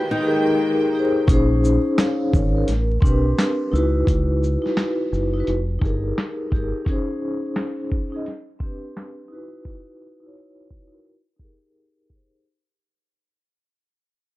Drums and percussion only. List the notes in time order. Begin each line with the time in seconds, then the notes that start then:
1.28 kick, closed hi-hat
1.65 shaker
1.98 snare, clap, closed hi-hat
2.33 kick, shaker
2.68 snare, closed hi-hat
3.02 kick, shaker
3.39 snare, clap, closed hi-hat
3.75 shaker
4.07 kick, closed hi-hat
4.44 shaker
4.66 snare
4.77 snare, clap, closed hi-hat
5.13 shaker
5.47 closed hi-hat
5.81 kick, shaker
6.18 snare, clap, closed hi-hat
6.52 kick, shaker
6.86 kick, closed hi-hat
7.56 snare, clap, closed hi-hat
7.92 kick
8.26 snare, closed hi-hat
8.60 kick
8.97 snare, clap, closed hi-hat
9.65 kick, closed hi-hat
10.37 closed hi-hat
10.71 kick
11.05 closed hi-hat
11.39 kick
11.78 closed hi-hat
12.10 kick